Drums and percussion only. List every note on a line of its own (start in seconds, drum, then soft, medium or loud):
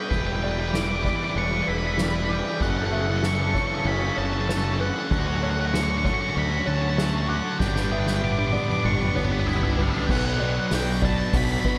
0.11 kick medium
0.11 crash medium
0.43 ride medium
0.74 snare loud
0.74 ride medium
1.04 kick medium
1.04 ride medium
1.36 ride medium
1.67 ride medium
1.98 snare loud
1.98 ride medium
2.29 ride medium
2.60 kick loud
2.60 ride loud
2.92 ride medium
3.23 snare loud
3.23 ride loud
3.54 kick medium
3.54 ride medium
3.85 ride medium
4.18 ride medium
4.49 snare loud
4.49 ride loud
4.81 ride medium
5.11 kick loud
5.11 crash medium
5.74 snare loud
6.05 kick medium
6.98 snare loud
7.60 kick loud
7.60 snare medium
7.76 snare medium
8.07 snare medium
8.23 high tom medium
8.53 high tom medium
8.69 mid tom medium
8.99 mid tom medium
9.15 mid tom medium
9.46 mid tom loud
9.62 floor tom medium
9.78 floor tom loud
9.92 floor tom medium
10.09 kick loud
10.09 crash loud
10.71 snare loud
10.71 open hi-hat medium
11.03 kick medium
11.33 kick loud
11.33 open hi-hat medium
11.65 kick medium